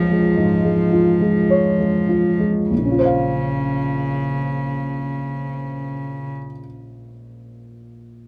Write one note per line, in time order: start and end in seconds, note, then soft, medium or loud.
0.00 0.35 C#2 medium
0.00 2.40 F3 soft
0.00 0.11 G#3 soft
0.00 0.93 F4 soft
0.00 1.50 C#5 soft
0.11 0.54 G#3 soft
0.37 0.82 G#2 soft
0.64 1.10 G#3 soft
0.93 1.39 F4 soft
1.21 1.68 G#3 soft
1.50 1.98 C#5 soft
1.80 2.28 G#3 soft
2.09 2.58 F4 soft
2.39 2.70 G#3 soft
2.69 6.30 A#1 soft
2.69 6.29 C#3 soft
2.78 6.37 A#2 soft
2.85 6.45 C#4 soft
2.91 6.51 F4 soft
2.99 6.58 C5 soft
3.05 6.65 F5 soft